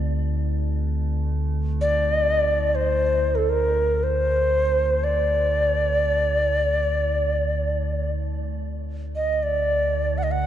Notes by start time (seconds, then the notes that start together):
Already playing: D2 A3 C4 F#4
1.81 D5
2.75 C5
3.35 A4 A#4
3.49 A#4
4.04 C5
5.04 D5
8.11 D2
9.16 D#5
9.43 D5
10.18 F#5
10.23 D#5
10.32 F#5